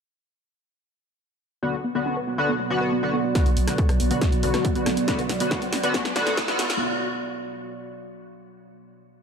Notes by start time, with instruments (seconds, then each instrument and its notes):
1.62 synth drone B2 F#3, analog polysynth D3 B3 F#4, ambient pad B3, synth arpeggio sound B3
1.73 synth arpeggio sound B3, ambient pad F#4
1.84 synth arpeggio sound B3
1.95 analog polysynth D3 B3 F#4, synth arpeggio sound B3
2.06 synth arpeggio sound C#4
2.17 synth arpeggio sound B4
2.27 synth arpeggio sound B3
2.38 analog polysynth D3 B3 F#4, synth arpeggio sound B3, ambient pad D5
2.49 synth arpeggio sound B3
2.60 synth arpeggio sound B3
2.70 analog polysynth D3 B3 F#4, synth arpeggio sound C#4
2.81 synth arpeggio sound B4
2.92 synth arpeggio sound B3
3.03 analog polysynth D3 B3 F#4, synth arpeggio sound B3
3.14 synth arpeggio sound B3
3.24 synth arpeggio sound B3
3.35 synth drone B2 F#3, analog polysynth D3 B3 F#4, synth arpeggio sound B3, kick, snare, closed hi-hat, riser
3.46 808-style bass B1, synth arpeggio sound B3, closed hi-hat
3.57 808-style bass B1, synth arpeggio sound B3, open hi-hat
3.67 analog polysynth D3 B3 F#4, synth arpeggio sound B3, cross-stick, snare, closed hi-hat
3.78 synth arpeggio sound C#4, kick, closed hi-hat
3.89 808-style bass B1, synth arpeggio sound B4, cross-stick, closed hi-hat
4.00 808-style bass B1, synth arpeggio sound B3, open hi-hat
4.11 analog polysynth D3 B3 F#4, synth arpeggio sound B3, closed hi-hat
4.21 kick, snare, closed hi-hat
4.32 808-style bass B1, synth arpeggio sound B3, closed hi-hat
4.43 808-style bass B1, analog polysynth D3 B3 F#4, synth arpeggio sound C#4, open hi-hat
4.54 synth arpeggio sound B4, cross-stick, snare, closed hi-hat
4.64 synth arpeggio sound B3, kick, closed hi-hat
4.75 808-style bass B1, analog polysynth D3 B3 F#4, synth arpeggio sound B3, closed hi-hat
4.86 808-style bass B1, synth arpeggio sound B3, cross-stick, snare, open hi-hat
4.97 synth arpeggio sound B3, closed hi-hat
5.08 analog polysynth D3 B3 F#4, synth arpeggio sound C#4, kick, snare, closed hi-hat
5.19 808-style bass B1, synth arpeggio sound B4, closed hi-hat
5.29 808-style bass B1, synth arpeggio sound B3, snare, open hi-hat
5.40 analog polysynth D3 B3 F#4, synth arpeggio sound B3, closed hi-hat
5.51 synth arpeggio sound B3, kick, snare, closed hi-hat
5.62 808-style bass B1, synth arpeggio sound B3, closed hi-hat
5.73 808-style bass B1, synth arpeggio sound C#4, snare, open hi-hat
5.83 analog polysynth D3 B3 F#4, synth arpeggio sound B4, closed hi-hat
5.94 synth arpeggio sound B3, kick, snare, closed hi-hat
6.05 808-style bass B1, synth arpeggio sound B3, snare, closed hi-hat
6.16 808-style bass B1, analog polysynth D3 B3 F#4, synth arpeggio sound B3, snare, open hi-hat
6.27 synth arpeggio sound B3, snare, closed hi-hat
6.37 synth arpeggio sound C#4, kick, snare, closed hi-hat
6.48 808-style bass B1, analog polysynth D3 B3 F#4, synth arpeggio sound B4, snare, closed hi-hat
6.59 808-style bass B1, synth arpeggio sound B3, snare, open hi-hat
6.70 synth arpeggio sound B3, snare, closed hi-hat